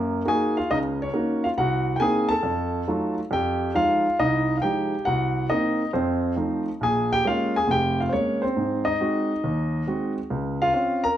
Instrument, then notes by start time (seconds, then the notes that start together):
grand piano
Already playing: F#2 A#3
0.25 A#3 D#4 F#4 G#4 G#5
0.57 F4 F5
0.71 C#2 C#3 D#4 D#5
1.02 C#4 C#5
1.14 A#3 D#4 F#4
1.44 F4 F5
1.58 C2 F#4 F#5
1.96 A#3 G5 G#5
2.00 C4 D#4 G#4
2.29 A4 A5
2.43 F2
2.88 F#3 A3 D#4 F4
3.31 F2 G4 G5
3.74 F3 G#3 D#4 F4 F5
4.19 C2 D#4 D#5
4.57 F5
4.62 F3 G#3 D#4 G4 G5
5.05 C2 F#4 F#5
5.50 A#3 C4 D#4 D#5
5.93 F2 C4 C5
6.36 F3 A3 D#4
6.81 A#1 G#4 G#5
7.13 G4 G5
7.25 G#3 A#3 C#4 F4 F5
7.56 G#4 G#5
7.68 F1 G5
7.72 G4
8.00 F4 F5
8.09 G#3 A#3 C5 C#5
8.13 C#4
8.42 C4 C5
8.57 G#2
8.85 D#4 D#5
9.00 G#3 C4 F#4
9.44 D#2
9.87 G#3 C4 F#4
10.30 C#2
10.62 F4 F5
10.74 C4 C#4 F4
11.04 A#4 A#5